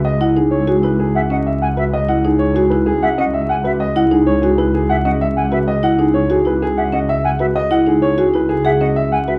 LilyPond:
<<
  \new Staff \with { instrumentName = "Flute" } { \time 6/4 \key cis \minor \tempo 4 = 192 r2. r8 e''8 fis''8 r8 gis''8 e''8 | r2. r8 e''8 fis''8 r8 gis''8 e''8 | r2. r8 e''8 fis''8 r8 gis''8 e''8 | r2. r8 e''8 fis''8 r8 gis''8 e''8 |
r2. r8 e''8 fis''8 r8 gis''8 e''8 | }
  \new Staff \with { instrumentName = "Grand piano" } { \time 6/4 \key cis \minor dis''8 fis''8 gis'8 cis''8 gis'8 b'8 gis'8 fis''8 dis''8 e''8 fis''8 b'8 | dis''8 fis''8 gis'8 cis''8 gis'8 b'8 gis'8 fis''8 dis''8 e''8 fis''8 b'8 | dis''8 fis''8 gis'8 cis''8 gis'8 b'8 gis'8 fis''8 dis''8 e''8 fis''8 b'8 | dis''8 fis''8 gis'8 cis''8 gis'8 b'8 gis'8 fis''8 dis''8 e''8 fis''8 b'8 |
dis''8 fis''8 gis'8 cis''8 gis'8 b'8 gis'8 fis''8 dis''8 e''8 fis''8 b'8 | }
  \new Staff \with { instrumentName = "Marimba" } { \time 6/4 \key cis \minor r8 e'8 dis'8 r8 fis'8 e'8 r4 cis'8 r4 fis'8 | r8 e'8 dis'8 r8 fis'8 e'8 r4 cis'8 r4 fis'8 | r8 e'8 dis'8 r8 fis'8 e'8 r4 cis'8 r4 fis'8 | r8 e'8 dis'8 r8 fis'8 e'8 r4 cis'8 r4 fis'8 |
r8 e'8 dis'8 r8 fis'8 e'8 r8 gis'8 cis'8 r4 fis'8 | }
  \new Staff \with { instrumentName = "Double bass section" } { \clef bass \time 6/4 \key cis \minor cis,1.~ | cis,1.~ | cis,1.~ | cis,1.~ |
cis,1. | }
>>